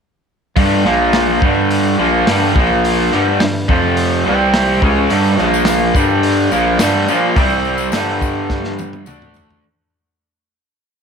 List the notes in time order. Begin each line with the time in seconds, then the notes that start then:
0.56 G2 D3 G3, kick, open hi-hat
0.85 A#1 A#2 F3 A#3, snare
1.13 snare, open hi-hat
1.41 G2 D3 G3, kick
1.70 open hi-hat
1.98 A#1 A#2 F3 A#3
2.26 G2 D3 G3, snare, open hi-hat
2.54 A#1 A#2 F3 A#3, kick
2.85 open hi-hat
3.12 G2 D3 G3, snare
3.40 G2 D3, snare, open hi-hat
3.68 F2 C3 F3, kick
3.97 open hi-hat
4.26 C2 C3 G3 C4
4.54 snare, open hi-hat
4.82 C#2 C#3 G#3 C#4, kick
5.10 G2 D3 G3, open hi-hat, tambourine
5.24 tambourine
5.38 A#1 A#2 F3 A#3, snare, tambourine
5.54 tambourine
5.65 snare, open hi-hat, tambourine
5.94 G2 D3 G3, kick, tambourine
6.10 tambourine
6.23 open hi-hat
6.38 tambourine
6.52 A#1 A#2 F3 A#3, tambourine
6.78 G2 D3 G3, snare, open hi-hat, tambourine
7.08 A#2 F3 A#3, tambourine
7.36 C2 C3 G3 C4, kick, open hi-hat, tambourine
7.50 tambourine
7.65 tambourine
7.78 tambourine
7.92 G2 D3 G3, snare, open hi-hat, tambourine
8.22 kick, tambourine
8.50 kick, snare, tambourine
8.64 snare
8.79 high tom, tambourine
8.93 high tom, tambourine
9.06 D2 D3 A3 D4, mid tom, tambourine
9.22 mid tom
9.34 floor tom, tambourine
9.49 floor tom, tambourine